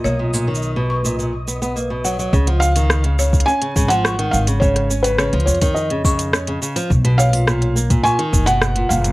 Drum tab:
HH |--------------------------------|--x---x---x----x--x---x---x---x-|--x---x---xxxxx---x---x---x---x-|--x---x---x---x---x---x---x---x-|
SH |x---x--xx-----x-x---x-x-x---x-x-|x---x-x-x---x-x-x---x-x-x---x-x-|x---x-x-x---x-x-x---x-x-x---x-x-|x---x-x-x---x-x-x---x-x-x---x-x-|
SD |--------------------------------|--------r---------------r-------|--r-----r---------------r-------|--------r---------------r-------|
BD |--------------------------------|o-------------o-----o-----------|o-------------o-----o-----------|o-------------o-----o-----------|